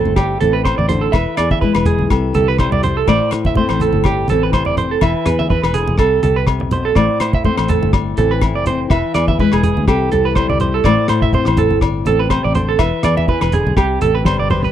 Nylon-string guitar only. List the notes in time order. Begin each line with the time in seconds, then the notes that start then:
Already playing: A3 C4 E4 C5
0.18 D5
0.40 E3 C4
0.90 D3
1.14 E3 B4
1.40 G#4
1.63 G#3 E4
2.11 C3 A4
2.35 G4
2.59 G3 E4
3.07 A2 C5
3.57 A3 C4
4.06 D5
4.29 E3 C4
4.53 C3
5.02 E3 B4
5.26 G#4
5.50 E3
5.74 D3
5.98 C3 A4
6.23 G4
6.46 C3
6.72 B2
6.96 A2 C5
7.22 E4
7.45 A3 C4
7.94 D5
8.17 E3 C4
8.42 E4
8.68 C4
8.91 E3 B4
9.16 G#4
9.40 G#3 E4
9.88 C3 A4
10.14 G4
10.37 G3 E4
10.86 A2 C5
11.11 E4
11.33 C4, muted nylon-string guitar stroke
11.82 D5
12.06 C4, muted nylon-string guitar stroke
12.30 C3
12.55 D3
12.80 E3 B4
13.05 G#4
13.29 E3
13.53 D3
13.77 C3, muted nylon-string guitar stroke
14.02 G4
14.26 G3 B4
14.50 B4